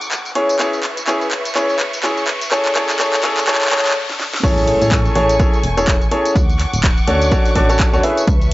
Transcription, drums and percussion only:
0.01 closed hi-hat soft
0.01 tambourine medium
0.11 clap medium
0.11 closed hi-hat medium
0.11 tambourine medium
0.25 closed hi-hat soft
0.25 tambourine soft
0.35 open hi-hat loud
0.49 closed hi-hat medium
0.49 tambourine medium
0.59 clap medium
0.59 closed hi-hat medium
0.59 tambourine medium
0.73 closed hi-hat soft
0.73 tambourine soft
0.83 clap medium
0.83 open hi-hat loud
0.97 closed hi-hat medium
0.97 tambourine medium
1.07 clap medium
1.07 closed hi-hat medium
1.07 tambourine medium
1.21 closed hi-hat soft
1.21 tambourine soft
1.31 clap medium
1.31 open hi-hat loud
1.45 closed hi-hat medium
1.45 tambourine medium
1.55 clap medium
1.55 closed hi-hat medium
1.55 tambourine medium
1.69 closed hi-hat soft
1.69 tambourine soft
1.79 clap medium
1.79 open hi-hat loud
1.93 closed hi-hat medium
1.93 tambourine medium
2.03 clap medium
2.03 closed hi-hat medium
2.03 tambourine medium
2.17 closed hi-hat soft
2.17 tambourine soft
2.27 clap medium
2.27 open hi-hat loud
2.41 closed hi-hat medium
2.41 tambourine medium
2.51 clap medium
2.51 closed hi-hat medium
2.51 tambourine medium
2.65 clap medium
2.65 closed hi-hat soft
2.65 tambourine soft
2.75 clap medium
2.75 open hi-hat loud
2.89 clap medium
2.89 closed hi-hat medium
2.89 tambourine medium
3.00 clap loud
3.00 closed hi-hat medium
3.00 tambourine medium
3.13 clap medium
3.13 closed hi-hat soft
3.13 tambourine soft
3.23 clap loud
3.23 open hi-hat loud
3.37 clap medium
3.37 closed hi-hat medium
3.37 tambourine medium
3.48 clap loud
3.48 closed hi-hat medium
3.48 tambourine medium
3.55 clap medium
3.61 clap medium
3.61 open hi-hat medium
3.61 tambourine soft
3.66 clap medium
3.71 clap loud
3.71 open hi-hat loud
3.78 clap medium
3.86 clap medium
3.86 closed hi-hat medium
3.86 tambourine medium
3.91 clap medium
4.10 snare medium
4.20 snare medium
4.33 snare medium
4.44 kick loud
4.44 closed hi-hat medium
4.44 tambourine medium
4.44 crash loud
4.58 closed hi-hat soft
4.58 tambourine soft
4.68 open hi-hat loud
4.82 closed hi-hat medium
4.82 tambourine medium
4.92 kick loud
4.92 clap loud
4.92 closed hi-hat medium
4.92 tambourine medium
5.06 closed hi-hat soft
5.06 tambourine soft
5.15 open hi-hat loud
5.29 closed hi-hat medium
5.29 tambourine medium
5.40 kick loud
5.40 closed hi-hat medium
5.40 tambourine medium
5.54 closed hi-hat soft
5.54 tambourine soft
5.64 open hi-hat loud
5.78 closed hi-hat medium
5.78 tambourine medium
5.88 kick loud
5.88 clap loud
5.88 closed hi-hat medium
5.88 tambourine medium
6.01 closed hi-hat soft
6.01 tambourine soft
6.11 open hi-hat loud
6.25 closed hi-hat medium
6.25 tambourine medium
6.36 kick loud
6.36 closed hi-hat medium
6.36 tambourine medium
6.49 closed hi-hat soft
6.49 tambourine soft
6.60 clap soft
6.60 open hi-hat loud
6.74 closed hi-hat medium
6.74 tambourine medium
6.84 kick loud
6.84 clap loud
6.84 closed hi-hat medium
6.84 tambourine medium
6.97 closed hi-hat soft
6.97 tambourine soft
7.08 open hi-hat loud
7.22 closed hi-hat medium
7.22 tambourine medium
7.32 kick loud
7.32 closed hi-hat medium
7.32 tambourine medium
7.46 open hi-hat medium
7.46 tambourine soft
7.56 kick medium
7.56 open hi-hat loud
7.70 closed hi-hat medium
7.70 tambourine medium
7.80 kick loud
7.80 clap loud
7.80 closed hi-hat medium
7.80 tambourine medium
7.94 closed hi-hat soft
7.94 tambourine soft
8.04 open hi-hat loud
8.17 closed hi-hat medium
8.17 tambourine medium
8.27 kick loud
8.27 closed hi-hat medium
8.41 closed hi-hat soft
8.41 tambourine soft

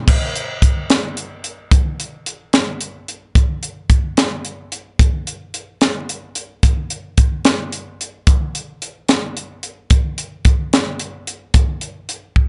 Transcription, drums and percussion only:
0.08 kick loud
0.08 crash medium
0.36 closed hi-hat medium
0.62 kick medium
0.62 closed hi-hat medium
0.90 snare loud
0.90 closed hi-hat medium
1.17 closed hi-hat medium
1.44 closed hi-hat medium
1.71 kick loud
1.71 closed hi-hat medium
2.00 closed hi-hat medium
2.26 closed hi-hat medium
2.53 snare medium
2.53 closed hi-hat medium
2.81 closed hi-hat medium
3.08 closed hi-hat medium
3.35 kick medium
3.35 closed hi-hat medium
3.63 closed hi-hat medium
3.90 kick medium
3.90 closed hi-hat medium
4.17 snare loud
4.17 closed hi-hat medium
4.45 closed hi-hat medium
4.72 closed hi-hat medium
4.99 kick loud
4.99 closed hi-hat medium
5.27 closed hi-hat medium
5.54 closed hi-hat medium
5.81 snare medium
5.81 closed hi-hat medium
6.09 closed hi-hat medium
6.35 closed hi-hat medium
6.63 kick medium
6.63 closed hi-hat medium
6.90 closed hi-hat medium
7.17 kick medium
7.17 closed hi-hat medium
7.45 snare loud
7.45 closed hi-hat medium
7.72 closed hi-hat medium
8.01 closed hi-hat medium
8.27 kick loud
8.27 closed hi-hat medium
8.55 closed hi-hat medium
8.82 closed hi-hat medium
9.09 snare medium
9.09 closed hi-hat medium
9.37 closed hi-hat medium
9.63 closed hi-hat medium
9.90 kick loud
9.90 closed hi-hat medium
10.18 closed hi-hat medium
10.45 kick medium
10.45 closed hi-hat medium
10.73 snare loud
10.73 closed hi-hat medium
10.99 closed hi-hat medium
11.27 closed hi-hat medium
11.54 kick loud
11.54 closed hi-hat medium
11.81 closed hi-hat medium
12.09 closed hi-hat medium
12.36 kick medium

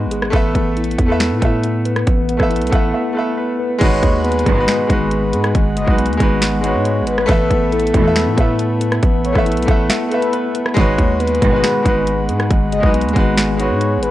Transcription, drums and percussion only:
0.11 closed hi-hat medium
0.22 cross-stick loud
0.33 kick loud
0.33 closed hi-hat medium
0.55 kick loud
0.55 closed hi-hat medium
0.77 closed hi-hat medium
0.84 closed hi-hat medium
0.91 closed hi-hat medium
0.98 kick medium
0.98 closed hi-hat medium
1.20 finger snap loud
1.20 snare loud
1.20 closed hi-hat medium
1.42 kick medium
1.42 closed hi-hat medium
1.63 closed hi-hat medium
1.85 closed hi-hat medium
1.96 cross-stick loud
1.96 closed hi-hat soft
2.07 kick loud
2.07 closed hi-hat medium
2.29 closed hi-hat medium
2.40 kick medium
2.40 cross-stick medium
2.51 closed hi-hat medium
2.56 closed hi-hat medium
2.61 closed hi-hat medium
2.67 closed hi-hat medium
2.72 kick loud
2.72 closed hi-hat medium
3.81 kick loud
3.81 closed hi-hat medium
3.81 crash loud
4.03 kick loud
4.03 closed hi-hat medium
4.25 closed hi-hat medium
4.32 closed hi-hat medium
4.39 closed hi-hat medium
4.46 kick loud
4.46 closed hi-hat medium
4.68 finger snap loud
4.68 snare loud
4.68 closed hi-hat medium
4.90 kick medium
4.90 closed hi-hat medium
5.11 closed hi-hat medium
5.33 closed hi-hat medium
5.44 cross-stick loud
5.44 closed hi-hat soft
5.55 kick loud
5.55 closed hi-hat medium
5.77 closed hi-hat medium
5.88 kick medium
5.98 closed hi-hat medium
6.06 closed hi-hat medium
6.13 closed hi-hat soft
6.20 kick loud
6.20 closed hi-hat medium
6.42 finger snap loud
6.42 snare loud
6.42 closed hi-hat medium
6.64 closed hi-hat medium
6.85 closed hi-hat medium
7.07 closed hi-hat medium
7.18 cross-stick loud
7.29 kick loud
7.29 closed hi-hat medium
7.51 kick loud
7.51 closed hi-hat medium
7.72 closed hi-hat medium
7.80 closed hi-hat medium
7.87 closed hi-hat medium
7.94 kick loud
7.94 closed hi-hat medium
8.16 finger snap loud
8.16 snare loud
8.16 closed hi-hat medium
8.38 kick loud
8.38 closed hi-hat medium
8.59 closed hi-hat medium
8.81 closed hi-hat medium
8.92 cross-stick loud
8.92 closed hi-hat soft
9.03 kick loud
9.03 closed hi-hat medium
9.25 closed hi-hat medium
9.35 kick loud
9.35 cross-stick medium
9.46 closed hi-hat medium
9.52 closed hi-hat medium
9.57 closed hi-hat medium
9.62 closed hi-hat medium
9.68 kick loud
9.68 closed hi-hat medium
9.90 finger snap loud
9.90 snare loud
9.90 closed hi-hat medium
10.11 closed hi-hat medium
10.22 closed hi-hat medium
10.33 closed hi-hat medium
10.55 closed hi-hat medium
10.66 cross-stick loud
10.77 kick loud
10.77 closed hi-hat medium
10.98 kick loud
10.98 closed hi-hat medium
11.20 closed hi-hat medium
11.27 closed hi-hat medium
11.35 closed hi-hat medium
11.42 kick medium
11.42 closed hi-hat medium
11.64 finger snap loud
11.64 snare loud
11.64 closed hi-hat medium
11.85 kick loud
11.85 closed hi-hat medium
12.07 closed hi-hat medium
12.29 closed hi-hat medium
12.40 cross-stick loud
12.40 closed hi-hat soft
12.51 kick loud
12.51 closed hi-hat medium
12.72 closed hi-hat medium
12.83 kick medium
12.94 closed hi-hat medium
13.01 closed hi-hat medium
13.09 closed hi-hat soft
13.16 kick loud
13.16 closed hi-hat medium
13.37 finger snap loud
13.37 snare loud
13.37 closed hi-hat medium
13.60 closed hi-hat medium
13.81 closed hi-hat medium
14.03 closed hi-hat medium

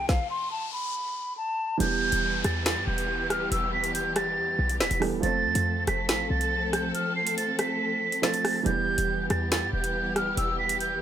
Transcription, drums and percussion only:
0.09 kick loud
0.09 snare medium
1.80 closed hi-hat medium
2.12 closed hi-hat medium
2.44 cross-stick medium
2.44 closed hi-hat medium
2.66 finger snap medium
2.66 snare loud
2.66 closed hi-hat medium
2.98 closed hi-hat medium
3.30 cross-stick medium
3.30 closed hi-hat medium
3.52 closed hi-hat medium
3.84 closed hi-hat medium
3.95 closed hi-hat medium
4.16 cross-stick loud
4.16 closed hi-hat medium
4.70 closed hi-hat medium
4.81 finger snap medium
4.81 snare loud
4.91 closed hi-hat medium
5.02 cross-stick medium
5.02 open hi-hat medium
5.23 closed hi-hat medium
5.55 closed hi-hat medium
5.87 cross-stick medium
5.87 closed hi-hat medium
6.09 finger snap medium
6.09 snare loud
6.09 closed hi-hat medium
6.41 closed hi-hat medium
6.73 cross-stick medium
6.73 closed hi-hat medium
6.95 closed hi-hat medium
7.27 closed hi-hat medium
7.38 closed hi-hat medium
7.59 cross-stick medium
7.59 closed hi-hat medium
8.12 closed hi-hat medium
8.23 finger snap medium
8.23 snare loud
8.34 closed hi-hat medium
8.45 cross-stick medium
8.45 open hi-hat medium
8.66 closed hi-hat medium
8.98 closed hi-hat medium
9.30 cross-stick medium
9.30 closed hi-hat medium
9.52 finger snap medium
9.52 snare loud
9.52 closed hi-hat medium
9.84 closed hi-hat medium
10.16 cross-stick medium
10.16 closed hi-hat medium
10.37 closed hi-hat medium
10.69 closed hi-hat medium
10.81 closed hi-hat medium

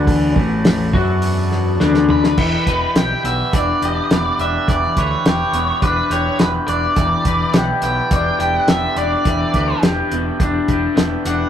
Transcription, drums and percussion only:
0.07 kick loud
0.07 open hi-hat medium
0.36 kick loud
0.65 snare loud
0.65 open hi-hat medium
0.94 kick medium
1.22 open hi-hat medium
1.52 snare soft
1.80 snare medium
1.94 snare medium
2.09 mid tom medium
2.24 snare medium
2.38 kick loud
2.38 crash medium
2.67 kick medium
2.67 closed hi-hat medium
2.96 snare loud
2.96 closed hi-hat medium
3.25 closed hi-hat medium
3.53 kick loud
3.53 closed hi-hat medium
3.82 closed hi-hat medium
4.11 snare loud
4.11 closed hi-hat medium
4.39 closed hi-hat soft
4.68 kick loud
4.68 closed hi-hat medium
4.97 kick medium
4.97 closed hi-hat medium
5.26 snare loud
5.26 closed hi-hat medium
5.53 closed hi-hat medium
5.82 kick loud
5.82 closed hi-hat medium
6.11 closed hi-hat medium
6.39 snare medium
6.39 closed hi-hat medium
6.68 closed hi-hat medium
6.96 kick loud
6.96 closed hi-hat medium
7.25 kick medium
7.25 closed hi-hat medium
7.54 snare loud
7.54 closed hi-hat medium
7.82 closed hi-hat medium
8.11 kick loud
8.11 closed hi-hat medium
8.40 closed hi-hat medium
8.68 snare loud
8.68 closed hi-hat medium
8.97 closed hi-hat medium
9.25 kick medium
9.25 closed hi-hat medium
9.54 kick medium
9.54 closed hi-hat medium
9.83 snare loud
9.83 closed hi-hat medium
10.12 closed hi-hat medium
10.40 kick loud
10.40 closed hi-hat medium
10.68 kick medium
10.68 closed hi-hat medium
10.97 snare medium
10.97 closed hi-hat medium
11.25 closed hi-hat medium

